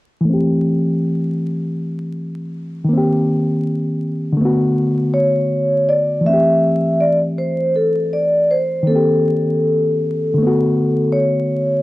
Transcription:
0.21 E3
0.25 A3
0.30 C4
0.34 G4
2.84 D#3
2.89 A#3
2.93 C4
2.97 G4
4.32 D3
4.37 A3
4.41 B3
4.45 F#4
5.14 C#5
5.89 D5
6.21 E3
6.25 A3 E5
6.29 C4
6.33 G4
7.00 D5
7.38 C5
7.76 A4
8.13 D5
8.51 C5
8.83 D#3
8.87 A#3 A4
8.92 C4
8.96 G4
10.34 D3
10.38 A3
10.42 B3
10.47 F#4
11.12 C#5

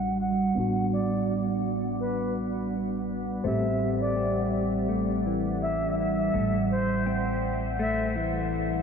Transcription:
Already playing: A1 G3 D4 F#4 F#5
0.21 F#5
0.55 A1 B3 D4
0.60 F#4
0.93 D5
2.00 B4
3.44 A1 G3 A3 C4 C5 E5 F#5
3.48 G4
4.01 D5
4.16 C4
4.89 A3
5.26 E3
5.62 E5
6.00 E5
6.34 A1 A3
6.71 C5
7.06 C4
7.79 A3 E5
8.15 E3

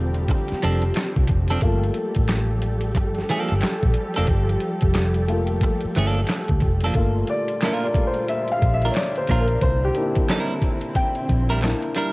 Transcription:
Already playing: E1 D3 F3 G3 A3 C4 D4 G4 A4 A#4
0.14 closed hi-hat, shaker
0.28 muted clean electric guitar stroke, kick, closed hi-hat, shaker
0.48 snare, closed hi-hat, shaker
0.52 muted fingered electric bass stroke
0.62 F1 F3 C4 D4 A4, closed hi-hat, shaker
0.82 closed hi-hat, shaker
0.94 finger snap, snare, clap, closed hi-hat, shaker
1.16 C2, kick, shaker
1.27 F1, kick, closed hi-hat
1.48 C4 D4 A4, snare, closed hi-hat, shaker
1.52 F3
1.61 G1 F3 G3 A3 A#3 F4 G4 A4, kick, closed hi-hat, shaker
1.83 closed hi-hat, shaker
1.94 closed hi-hat, shaker
2.15 A1, kick, closed hi-hat, shaker
2.28 finger snap, snare, clap, closed hi-hat, shaker
2.50 shaker
2.62 closed hi-hat, shaker
2.81 closed hi-hat, shaker
2.95 G1, muted clean electric guitar stroke, kick, closed hi-hat, shaker
3.15 snare, closed hi-hat, shaker
3.29 F3 A#3 D4 A4, closed hi-hat, shaker
3.49 G1, closed hi-hat, shaker
3.61 finger snap, muted fingered electric bass stroke, snare, clap, closed hi-hat, shaker
3.83 A#1, kick, shaker
3.94 closed hi-hat
4.14 F3 A#3 D4 A4, snare, closed hi-hat, shaker
4.18 F1
4.27 G1, kick, closed hi-hat, shaker
4.49 closed hi-hat, shaker
4.60 closed hi-hat, shaker
4.81 F1, kick, closed hi-hat, shaker
4.94 finger snap, snare, clap, closed hi-hat, shaker
5.14 closed hi-hat, shaker
5.28 A3 A#3 F4, closed hi-hat, shaker
5.47 closed hi-hat, shaker
5.61 muted clean electric guitar stroke, kick, closed hi-hat, shaker
5.81 closed hi-hat, shaker
5.85 muted fingered electric bass stroke
5.95 G1 F3 A#3 D4 A4, closed hi-hat, shaker
6.14 closed hi-hat, shaker
6.27 finger snap, snare, clap, closed hi-hat, shaker
6.48 D2, kick, closed hi-hat, shaker
6.60 F1, kick, closed hi-hat, shaker
6.80 A4, snare, closed hi-hat, shaker
6.85 F3 A#3 D4
6.94 G1 A#2 D3 G3 A3 A#3 F4, kick, closed hi-hat, shaker
7.16 shaker
7.27 D5, closed hi-hat, shaker
7.48 closed hi-hat, shaker
7.61 A#3 D4 A#4, finger snap, snare, clap, closed hi-hat, shaker
7.65 F4 A#4
7.83 D5, shaker
7.95 A3 A#3 F4, kick, closed hi-hat
8.07 C5
8.14 closed hi-hat, shaker
8.28 E5, closed hi-hat, shaker
8.48 closed hi-hat, shaker
8.52 F5
8.62 A#1, kick, closed hi-hat, shaker
8.74 E5
8.82 F4 A#4, closed hi-hat, shaker
8.86 A#3 D4
8.91 C#5, closed hi-hat
8.95 D5, finger snap, snare, clap, shaker
9.16 C5, closed hi-hat, shaker
9.28 A#1 A#3 D4 F4 A#4, kick, closed hi-hat
9.41 A#4
9.48 closed hi-hat, shaker
9.61 C2 C4 E4 C5, kick, closed hi-hat, shaker
9.83 G4, shaker
9.95 A#3 D4 E4, closed hi-hat, shaker
10.15 kick, closed hi-hat, shaker
10.28 G3 D4 E4 A#4, finger snap, snare, clap, closed hi-hat, shaker
10.51 shaker
10.62 kick, closed hi-hat
10.81 closed hi-hat, shaker
10.95 G5, kick, closed hi-hat, shaker
11.15 closed hi-hat, shaker
11.29 A#1, kick, closed hi-hat, shaker
11.49 G3 D4 E4 A#4, closed hi-hat, shaker
11.61 A#3 D4 E4, finger snap, snare, clap, closed hi-hat, shaker
11.82 closed hi-hat, shaker
11.95 G3 D4 E4 A#4, closed hi-hat

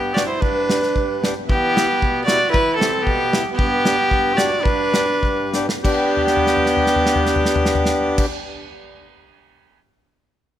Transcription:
Already playing: G2 B3 G4
0.14 B3 D4 F#4 G4 D5, snare
0.26 E4 C5
0.40 G2 D4 B4, kick
0.68 B3 D4 G4, snare
0.82 snare
0.94 G2, kick
1.21 B3 D4 G4, snare
1.46 E3 B3 G4, kick
1.74 B3 E4 G4, snare, hi-hat pedal
2.01 B2, kick
2.24 B3 E4 F#4 D5, snare, hi-hat pedal
2.29 G4
2.50 E3 E4 B4
2.54 kick
2.76 B3 C4 E4 A4
2.80 G4, snare, hi-hat pedal
3.02 B2 B3 G4
3.07 kick
3.31 B3 E4 G4, snare, hi-hat pedal
3.54 B3 G4
3.58 G2, kick
3.85 B3 D4 G4, snare, hi-hat pedal
4.09 G2, kick
4.34 F#4 D5
4.38 B3 D4 G4, snare, hi-hat pedal
4.62 G2 D4 B4, kick
4.92 B3 D4 G4, snare, hi-hat pedal
5.23 G2, kick
5.52 B3 D4 G4, snare, hi-hat pedal
5.69 snare
5.83 B3 D4 G4, kick, crash
6.17 floor tom
6.27 snare
6.37 floor tom
6.46 snare
6.57 floor tom
6.66 snare
6.77 floor tom
6.86 snare
6.96 floor tom
7.06 snare
7.16 floor tom
7.26 snare
7.36 floor tom
7.45 snare
7.56 floor tom
7.66 snare
7.75 floor tom
7.85 snare
8.18 kick, crash

